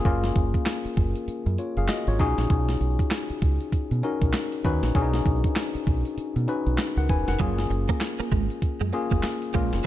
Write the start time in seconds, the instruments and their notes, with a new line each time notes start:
Already playing: tine electric piano A#3 C#4 F4 G#4
0.05 fingered electric bass F#1, tine electric piano A#3 C#4 F4 A#4, kick, closed hi-hat
0.24 snare, closed hi-hat
0.36 fingered electric bass F#1, kick, closed hi-hat
0.54 kick, closed hi-hat
0.66 snare, clap, closed hi-hat
0.85 muted fingered electric bass stroke, closed hi-hat
0.97 fingered electric bass F#1, kick, closed hi-hat
1.16 closed hi-hat
1.28 muted fingered electric bass stroke, closed hi-hat
1.46 fingered electric bass F#2, closed hi-hat
1.58 tine electric piano F4 C#5, closed hi-hat
1.77 fingered electric bass F#1, tine electric piano G#4 F5, closed hi-hat
1.88 tine electric piano F#4 D#5, snare, clap, closed hi-hat
2.07 fingered electric bass G#1, tine electric piano F4 C#5, closed hi-hat
2.19 fingered electric bass B1, tine electric piano C#4 D#4 F#4 G#4, kick, closed hi-hat
2.38 fingered electric bass A#1, snare, closed hi-hat
2.50 fingered electric bass B1, kick, closed hi-hat
2.69 snare, closed hi-hat
2.81 fingered electric bass B1, closed hi-hat
2.99 kick, closed hi-hat
3.11 snare, clap, closed hi-hat
3.30 muted fingered electric bass stroke, closed hi-hat
3.42 fingered electric bass C#2, kick, closed hi-hat
3.60 closed hi-hat
3.72 muted fingered electric bass stroke, kick, closed hi-hat
3.91 fingered electric bass B2, closed hi-hat
4.03 tine electric piano C#4 D#4 F#4 A#4, closed hi-hat
4.22 fingered electric bass B1, kick, closed hi-hat
4.33 snare, clap, closed hi-hat
4.52 closed hi-hat
4.64 fingered electric bass D#2, tine electric piano C#4 D#4 F#4 B4, kick, closed hi-hat
4.83 fingered electric bass A#1, snare, closed hi-hat
4.95 fingered electric bass B1, tine electric piano C#4 D4 F#4 G#4, kick, closed hi-hat
5.02 tine electric piano D#4
5.14 snare, closed hi-hat
5.26 fingered electric bass B1, kick, closed hi-hat
5.44 kick, closed hi-hat
5.56 snare, clap, closed hi-hat
5.75 muted fingered electric bass stroke, closed hi-hat
5.87 fingered electric bass B1, kick, closed hi-hat
6.05 closed hi-hat
6.17 muted fingered electric bass stroke, closed hi-hat
6.36 fingered electric bass B2, closed hi-hat
6.48 tine electric piano C#4 D#4 F#4 B4, closed hi-hat
6.67 fingered electric bass B1, closed hi-hat
6.78 snare, clap, closed hi-hat
6.97 fingered electric bass C#2, tine electric piano A#4 F#5, closed hi-hat
7.09 fingered electric bass E1, tine electric piano B4 G#5, kick, closed hi-hat
7.28 fingered electric bass F1, tine electric piano A#4 F#5, snare, closed hi-hat
7.40 fingered electric bass F#1, clean electric guitar F#3, tine electric piano A#3 C#4 F4 G#4, kick, closed hi-hat
7.59 snare, closed hi-hat
7.70 fingered electric bass F#1, muted clean electric guitar stroke, closed hi-hat
7.89 clean electric guitar A#3, kick, closed hi-hat
8.01 muted clean electric guitar stroke, snare, clap, closed hi-hat
8.19 clean electric guitar A#3, muted fingered electric bass stroke, closed hi-hat
8.32 fingered electric bass G#1, clean electric guitar G#3, kick, closed hi-hat
8.50 closed hi-hat
8.62 muted fingered electric bass stroke, kick, closed hi-hat
8.81 fingered electric bass F#2, clean electric guitar G#3, closed hi-hat
8.93 tine electric piano A#3 C#4 F4 G#4, muted clean electric guitar stroke, closed hi-hat
9.11 fingered electric bass F#1, clean electric guitar A#3, kick, closed hi-hat
9.23 snare, clap, closed hi-hat
9.42 closed hi-hat
9.54 fingered electric bass A#1, clean electric guitar G#3, tine electric piano A#3 C#4 F4 A#4, kick, closed hi-hat
9.73 fingered electric bass F1, snare, closed hi-hat